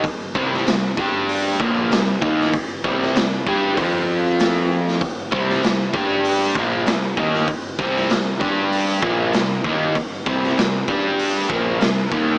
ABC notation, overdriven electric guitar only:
X:1
M:4/4
L:1/8
Q:1/4=97
K:Gdor
V:1 name="Overdriven electric guitar" clef=bass
z [C,G,C] [C,G,] [G,DG]2 [B,,F,B,] [C,G,] [_E,B,_E] | z [C,G,C] [C,G,] [G,DG] [F,CF]4 | z [C,G,C] [C,G,] [G,DG]2 [B,,F,B,] [C,G,] [_E,B,_E] | z [C,G,C] [C,G,] [G,DG]2 [B,,F,B,] [C,G,] [_E,B,_E] |
z [C,G,C] [C,G,] [G,DG]2 [B,,F,B,] [C,G,] [_E,B,_E] |]